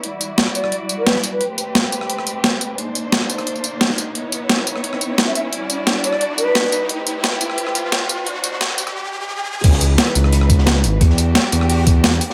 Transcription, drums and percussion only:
0.04 closed hi-hat medium
0.21 closed hi-hat medium
0.21 tambourine medium
0.38 snare loud
0.38 closed hi-hat medium
0.47 cross-stick soft
0.55 closed hi-hat medium
0.55 tambourine medium
0.64 cross-stick soft
0.72 closed hi-hat medium
0.89 closed hi-hat medium
0.89 tambourine medium
1.07 snare loud
1.07 closed hi-hat medium
1.15 snare soft
1.23 closed hi-hat medium
1.23 tambourine medium
1.41 closed hi-hat medium
1.58 closed hi-hat medium
1.58 tambourine medium
1.75 snare loud
1.75 closed hi-hat medium
1.84 cross-stick soft
1.92 closed hi-hat medium
1.92 tambourine medium
2.01 cross-stick soft
2.10 closed hi-hat medium
2.19 cross-stick soft
2.27 closed hi-hat medium
2.27 tambourine medium
2.44 snare loud
2.44 closed hi-hat medium
2.61 closed hi-hat medium
2.61 tambourine medium
2.78 closed hi-hat medium
2.95 closed hi-hat medium
2.95 tambourine medium
3.12 snare loud
3.12 closed hi-hat medium
3.21 cross-stick soft
3.30 closed hi-hat medium
3.30 tambourine medium
3.38 cross-stick soft
3.38 tambourine soft
3.47 closed hi-hat medium
3.55 tambourine soft
3.64 closed hi-hat medium
3.64 tambourine medium
3.81 snare loud
3.81 closed hi-hat medium
3.90 snare soft
3.98 closed hi-hat medium
3.98 tambourine medium
4.15 closed hi-hat medium
4.32 closed hi-hat medium
4.32 tambourine medium
4.49 snare loud
4.49 closed hi-hat medium
4.58 cross-stick soft
4.67 closed hi-hat medium
4.67 tambourine medium
4.76 cross-stick soft
4.84 closed hi-hat medium
4.93 cross-stick soft
5.01 closed hi-hat medium
5.01 tambourine medium
5.18 snare loud
5.18 closed hi-hat medium
5.35 closed hi-hat medium
5.35 tambourine medium
5.53 closed hi-hat medium
5.70 closed hi-hat medium
5.70 tambourine medium
5.87 snare loud
5.87 closed hi-hat medium
5.96 cross-stick soft
6.04 closed hi-hat medium
6.04 tambourine medium
6.13 cross-stick soft
6.21 closed hi-hat medium
6.38 closed hi-hat medium
6.38 tambourine medium
6.55 snare loud
6.55 closed hi-hat medium
6.64 snare soft
6.72 closed hi-hat medium
6.72 tambourine medium
6.89 closed hi-hat medium
7.07 closed hi-hat loud
7.07 tambourine medium
7.24 snare loud
7.24 closed hi-hat medium
7.32 cross-stick soft
7.41 closed hi-hat medium
7.41 tambourine medium
7.50 cross-stick soft
7.58 closed hi-hat medium
7.67 cross-stick soft
7.75 closed hi-hat loud
7.75 tambourine medium
7.92 snare loud
7.92 closed hi-hat medium
8.09 closed hi-hat medium
8.09 tambourine medium
8.27 closed hi-hat medium
8.44 closed hi-hat loud
8.44 tambourine medium
8.61 snare loud
8.61 closed hi-hat medium
8.70 cross-stick soft
8.78 closed hi-hat loud
8.78 tambourine medium
8.87 cross-stick soft
8.87 tambourine soft
9.64 kick loud
9.64 closed hi-hat medium
9.64 crash loud
9.72 snare medium
9.80 closed hi-hat medium
9.80 tambourine medium
9.98 snare loud
9.98 closed hi-hat medium
10.06 cross-stick soft
10.06 closed hi-hat soft
10.15 closed hi-hat loud
10.15 closed hi-hat medium
10.15 tambourine medium
10.24 cross-stick soft
10.32 closed hi-hat medium
10.32 closed hi-hat loud
10.41 cross-stick soft
10.50 kick loud
10.50 closed hi-hat medium
10.50 tambourine medium
10.58 snare soft
10.66 snare loud
10.66 closed hi-hat medium
10.75 snare soft
10.84 closed hi-hat loud
10.84 closed hi-hat medium
10.84 tambourine medium
11.01 kick loud
11.01 closed hi-hat medium
11.10 snare soft
11.18 closed hi-hat medium
11.18 tambourine medium
11.35 snare loud
11.35 closed hi-hat medium
11.44 cross-stick medium
11.52 closed hi-hat medium
11.52 tambourine medium
11.61 cross-stick soft
11.69 closed hi-hat medium
11.69 open hi-hat medium
11.87 kick loud
11.87 closed hi-hat medium
11.87 tambourine medium
12.04 snare loud
12.04 closed hi-hat medium
12.13 closed hi-hat soft
12.21 closed hi-hat medium
12.21 tambourine medium
12.30 snare medium

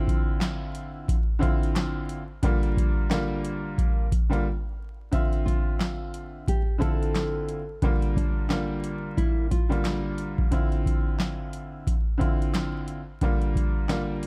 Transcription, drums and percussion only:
0.07 kick medium
0.07 closed hi-hat medium
0.41 snare loud
0.41 clap medium
0.41 closed hi-hat loud
0.75 closed hi-hat medium
1.08 kick loud
1.08 closed hi-hat loud
1.42 kick loud
1.42 closed hi-hat medium
1.63 closed hi-hat medium
1.76 snare loud
1.76 clap loud
1.76 closed hi-hat loud
2.09 closed hi-hat medium
2.43 kick loud
2.43 closed hi-hat medium
2.63 closed hi-hat soft
2.77 kick loud
2.77 closed hi-hat medium
3.11 snare loud
3.11 clap medium
3.11 closed hi-hat loud
3.45 closed hi-hat medium
3.78 kick medium
3.78 closed hi-hat loud
4.12 kick medium
4.12 closed hi-hat medium
4.33 closed hi-hat medium
5.12 kick loud
5.12 closed hi-hat medium
5.33 closed hi-hat soft
5.47 kick medium
5.47 closed hi-hat medium
5.81 snare loud
5.81 clap medium
5.81 closed hi-hat loud
6.14 closed hi-hat medium
6.48 kick medium
6.48 closed hi-hat medium
6.82 kick medium
6.82 closed hi-hat medium
7.03 closed hi-hat medium
7.15 snare loud
7.15 clap loud
7.15 closed hi-hat loud
7.49 closed hi-hat medium
7.82 kick loud
7.82 closed hi-hat medium
8.02 closed hi-hat soft
8.16 kick medium
8.16 closed hi-hat medium
8.50 snare loud
8.50 clap medium
8.50 closed hi-hat loud
8.84 closed hi-hat medium
9.17 kick medium
9.17 closed hi-hat medium
9.51 kick medium
9.51 closed hi-hat medium
9.72 closed hi-hat medium
9.85 snare loud
9.85 clap loud
9.85 closed hi-hat loud
10.18 closed hi-hat medium
10.38 kick loud
10.52 kick loud
10.52 closed hi-hat medium
10.72 closed hi-hat soft
10.86 kick medium
10.86 closed hi-hat medium
11.20 snare loud
11.20 clap medium
11.20 closed hi-hat loud
11.53 closed hi-hat medium
11.87 kick medium
11.87 closed hi-hat medium
12.21 kick medium
12.21 closed hi-hat medium
12.42 closed hi-hat medium
12.54 snare loud
12.54 clap loud
12.54 closed hi-hat loud
12.88 closed hi-hat medium
13.21 kick loud
13.21 closed hi-hat medium
13.42 closed hi-hat soft
13.56 kick medium
13.56 closed hi-hat medium
13.89 snare loud
13.89 clap medium
13.89 closed hi-hat loud
14.23 closed hi-hat medium

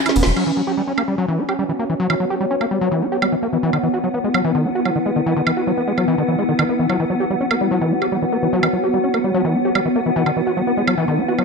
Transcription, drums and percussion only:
0.06 snare medium
0.06 closed hi-hat medium
0.06 tambourine soft
0.06 high woodblock medium
0.16 open hi-hat loud
0.16 tambourine loud
0.23 snare medium
0.23 open hi-hat medium
0.23 tambourine soft
0.36 crash medium
0.36 high woodblock soft
0.98 high woodblock medium
1.49 high woodblock soft
2.10 high woodblock medium
2.61 high woodblock soft
3.22 high woodblock medium
3.73 high woodblock soft
4.34 high woodblock medium
4.85 high woodblock soft
5.47 high woodblock medium
5.98 high woodblock soft
6.59 high woodblock medium
6.90 high woodblock soft
7.51 high woodblock medium
8.02 high woodblock soft
8.63 high woodblock medium
9.14 high woodblock soft
9.75 high woodblock medium
10.26 high woodblock soft
10.88 high woodblock medium
11.39 high woodblock soft

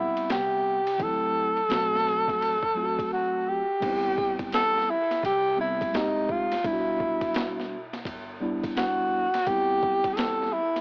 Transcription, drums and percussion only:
0.17 ride medium
0.30 snare loud
0.30 hi-hat pedal soft
0.30 ride medium
0.87 ride medium
1.00 kick loud
1.00 ride medium
1.57 ride medium
1.70 snare medium
1.70 hi-hat pedal medium
1.70 ride medium
1.95 snare soft
2.07 snare soft
2.28 kick loud
2.28 snare soft
2.28 ride medium
2.42 ride medium
2.63 kick medium
2.99 kick loud
2.99 ride medium
3.82 kick loud
3.82 crash medium
3.82 ride medium
4.18 kick loud
4.39 kick medium
4.39 ride medium
4.52 snare medium
4.52 hi-hat pedal medium
4.52 ride medium
4.78 snare soft
5.11 snare soft
5.11 ride medium
5.23 kick loud
5.23 ride medium
5.81 kick loud
5.81 ride medium
5.94 snare medium
5.94 hi-hat pedal soft
5.94 ride medium
6.29 kick medium
6.52 snare soft
6.52 ride medium
6.65 kick loud
6.65 ride medium
7.00 kick medium
7.21 kick medium
7.21 ride medium
7.34 snare loud
7.34 hi-hat pedal medium
7.34 ride medium
7.60 snare soft
7.93 snare soft
7.93 ride medium
8.05 kick medium
8.05 ride medium
8.63 kick loud
8.63 ride medium
8.77 snare medium
8.77 hi-hat pedal medium
8.77 ride medium
9.34 snare soft
9.34 ride medium
9.47 kick loud
9.47 ride medium
9.83 kick medium
10.04 kick medium
10.04 ride medium
10.17 snare loud
10.17 hi-hat pedal medium
10.17 ride medium
10.42 snare soft
10.76 snare soft
10.76 ride medium

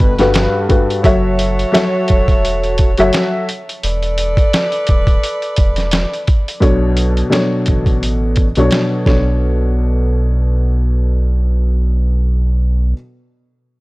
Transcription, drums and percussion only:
0.00 kick loud
0.19 snare soft
0.19 closed hi-hat medium
0.34 snare loud
0.34 closed hi-hat medium
0.70 kick loud
0.70 closed hi-hat medium
0.90 closed hi-hat medium
1.04 kick loud
1.04 closed hi-hat loud
1.39 closed hi-hat medium
1.59 closed hi-hat medium
1.75 snare loud
1.75 closed hi-hat loud
2.08 kick loud
2.08 closed hi-hat medium
2.28 kick loud
2.28 closed hi-hat medium
2.45 closed hi-hat medium
2.64 closed hi-hat soft
2.78 kick loud
2.78 closed hi-hat medium
2.98 closed hi-hat medium
3.13 snare loud
3.13 closed hi-hat medium
3.49 closed hi-hat medium
3.69 closed hi-hat medium
3.83 closed hi-hat loud
4.03 closed hi-hat soft
4.18 closed hi-hat medium
4.37 kick loud
4.37 closed hi-hat medium
4.53 snare loud
4.53 closed hi-hat loud
4.72 closed hi-hat soft
4.87 kick loud
4.87 closed hi-hat medium
5.07 kick medium
5.07 closed hi-hat medium
5.24 closed hi-hat medium
5.42 closed hi-hat soft
5.56 kick medium
5.56 closed hi-hat medium
5.76 snare soft
5.76 closed hi-hat medium
5.91 snare loud
5.91 closed hi-hat medium
6.13 closed hi-hat soft
6.27 kick loud
6.27 closed hi-hat medium
6.48 closed hi-hat medium
6.62 kick loud
6.62 closed hi-hat medium
6.97 closed hi-hat medium
7.17 closed hi-hat medium
7.32 snare loud
7.32 closed hi-hat medium
7.66 kick medium
7.66 closed hi-hat medium
7.86 kick medium
7.86 closed hi-hat medium
8.03 closed hi-hat medium
8.36 kick medium
8.36 closed hi-hat medium
8.55 closed hi-hat medium
8.71 snare loud
8.71 closed hi-hat medium
9.06 kick loud
9.06 snare medium

